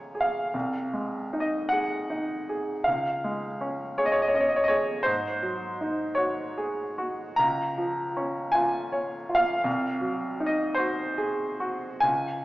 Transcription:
Already playing: C#2 G#3 C#4 G#4 C#5 G#5 A#5
0.15 G#4
0.21 F5
0.54 C2
0.93 G#3
1.33 D#4
1.40 D#5
1.69 G#4 F#5
2.10 D#4
2.49 G#4
2.84 C#2 F5
3.24 G#3
3.61 C#4
3.98 G#4 C#5
4.06 D#5
4.12 C#5
4.22 D#5
4.28 C#5
4.34 C#4 D#5
4.40 C#5
4.49 D#5
4.56 C#5
4.64 D#5
4.68 G#4 C#5
5.03 G#2 C5
5.42 F#3
5.81 D#4
6.15 F#4 C#5
6.58 G#4
6.98 F#4
7.36 C#2 A#5
7.78 F3
8.17 C#4
8.52 F4 G#5
8.92 C#5
9.29 F4
9.35 F5
9.64 C2
10.01 F#3
10.40 D#4
10.46 D#5
10.74 F#4 C5
11.18 G#4
11.60 F#4
12.00 C#2 G#5

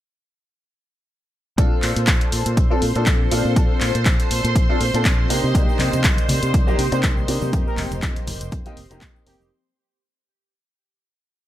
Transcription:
1.57 A#1 C4 D4 F4 A4 C5 C6, kick, closed hi-hat
1.82 A#2, clap, open hi-hat
1.96 A#2, closed hi-hat
2.07 A#1, kick, clap, closed hi-hat
2.21 closed hi-hat
2.32 A#2, open hi-hat
2.46 A#2, closed hi-hat
2.57 A#1, kick, closed hi-hat
2.70 C4 D4 F4 A4
2.82 A#2, open hi-hat
2.95 A#2 C4 D4 F4 A4, closed hi-hat
3.06 A#1, kick, clap, closed hi-hat
3.31 A#2 C4 D4 F4 A4, open hi-hat
3.45 A#2
3.56 A#1 C4 D4 F4 A4, kick, closed hi-hat
3.81 A#2, clap, open hi-hat
3.95 A#2, closed hi-hat
4.05 A#1, kick, clap, closed hi-hat
4.20 closed hi-hat
4.31 A#2, open hi-hat
4.44 A#2, closed hi-hat
4.55 A#1, kick, closed hi-hat
4.69 C4 D4 F4 A4
4.80 A#2, open hi-hat
4.94 A#2 C4 D4 F4 A4, closed hi-hat
5.05 A#1, kick, clap, closed hi-hat
5.29 C3 A#3 D4 D#4 G4, open hi-hat
5.44 C3
5.54 C2 A#3 D4 D#4 G4, kick, closed hi-hat, shaker
5.69 shaker
5.79 C3, clap, open hi-hat, high conga
5.93 C3, closed hi-hat, low conga, shaker
6.04 C2, kick, clap, closed hi-hat, shaker
6.17 closed hi-hat, high conga, shaker
6.29 C3, open hi-hat, low conga
6.43 C3, closed hi-hat, shaker
6.54 C2, kick, closed hi-hat, shaker
6.67 A#3 D4 D#4 G4, high conga, shaker
6.79 C3, open hi-hat
6.92 C3 A#3 D4 D#4 G4 C5, closed hi-hat, shaker
7.03 C2, kick, clap, closed hi-hat, high conga, shaker
7.17 shaker
7.28 C3 A#3 D4 D#4 G4, open hi-hat
7.41 C3, high conga, shaker
7.52 F2 A#3 C4 D#4 G4, kick, closed hi-hat, shaker
7.67 A#4, shaker
7.77 F1, clap, open hi-hat, high conga
7.91 F1, closed hi-hat, low conga, shaker
8.02 F2, kick, clap, closed hi-hat, shaker
8.16 closed hi-hat, high conga, shaker
8.27 F1, open hi-hat, low conga
8.41 F1, closed hi-hat, shaker
8.52 F2, kick, closed hi-hat, shaker
8.65 A#3 C4 D#4 G4, closed hi-hat, high conga, shaker
8.77 F1, open hi-hat
8.90 F1 A#3 C4 D#4 G4, closed hi-hat, shaker
9.01 F2, kick, clap, closed hi-hat, high conga, shaker
9.16 shaker
9.26 F1 A#3 C4 D#4 G4, open hi-hat
9.40 F1, high conga, shaker

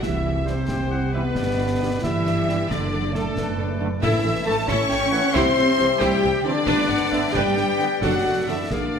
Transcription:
0.01 C2 E3 E4 G4 E5, concert bass drum, snare
0.25 E4 G4
0.44 C3 E3 G3 E4 G4 C5, snare
0.48 C4 C5
0.68 C2 E4 G4 G5, concert bass drum, snare
0.91 E4 G4 F#5
1.13 B2 E3 G3 B3 E4 G4 B4 E5
1.35 G1 D4 G4 D5, concert bass drum, snare
1.57 D4 G4
1.80 D3 G3 D4 G4
2.01 G1 E3 D4 E4 G4 D5 E5, concert bass drum, snare
2.06 E5
2.26 D4 G4, snare
2.48 D3 G3 D4 G4, snare
2.69 F#1 D3 D4 A4 D5, concert bass drum, snare
2.87 A4 B4
2.92 D4 A4
3.04 G4 A4
3.13 A2 D3 A3 D4 A4, snare
3.17 A4
3.37 F#1 D4 A4 B4, concert bass drum, snare
3.59 D4 A4
3.79 D3 A3 D4 A4
4.01 A1 A2 E3 E4 A4 E5, concert bass drum, snare, crash
4.24 A1 E4 A4
4.45 A1 E3 A3 E4 A4 A5
4.68 A1 C#4 E4 A4 C#5 E5 C#6, concert bass drum, snare
4.90 A1 E4 A4 G5, snare
5.11 E3 A3 F#5, snare
5.33 C2 C4 E4 G4 A4 C5 E5 C6, concert bass drum, snare
5.38 G4
5.57 C2 E4 G4
5.77 C2 E3 C4 E4 G4, snare
5.99 C2 G3 E4 G4 G5, concert bass drum, snare
6.21 C2 E4 G4
6.44 D3 E3 C4 D4 D5
6.66 G1 D4 B4 D5, concert bass drum, snare
6.71 B4
6.89 G1 D4 B4 F#5
7.12 G1 D3 B3 D4 B4 E5
7.33 G1 G3 D4 G4 B4 D5 G5, concert bass drum, snare
7.57 G1 D4 B4, snare
7.79 D3 B3, snare
8.02 F#1 F#3 D4 F#4 A4 F#5, concert bass drum, snare
8.25 F#1 D4 A4
8.46 F#1 D3 E3 A3 D4 E4 A4 E5
8.70 A#1 D3 A#3 D4 G#4 A#4 D5 F5, concert bass drum, snare
8.94 A#1 A#3 G#4

